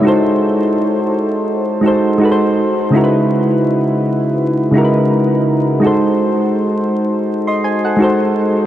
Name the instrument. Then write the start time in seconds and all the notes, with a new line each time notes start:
synth keys
Already playing: E4 C#5
0.01 G#3 D#4 F#4
0.07 A4 C5
1.81 G#3 D#4 F#4
1.86 A4 C5
2.18 G#3 D#4 F#4
2.23 A4 B4
2.32 C5
2.90 C#3 G#3 D#4
2.94 E4 F#4 A#4
3.04 B4
4.71 C#3 G#3 D#4
4.75 E4 F#4 A#4
4.85 B4
5.80 G#3 D#4 F#4
5.85 A4 C5
7.47 D#5 C6
7.64 C5 G#5
7.85 A4 F#5
7.97 G#3 D#4 F#4
8.02 A4 C5